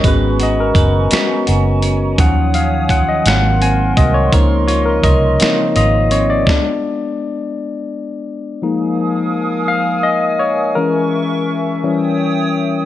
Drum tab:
HH |xxxxxx|xxxxxx|xxxxxx|------|
SD |---o--|---o--|---o--|o-----|
BD |o-o---|o-o--o|o-o---|o-----|

HH |------|------|
SD |------|------|
BD |------|------|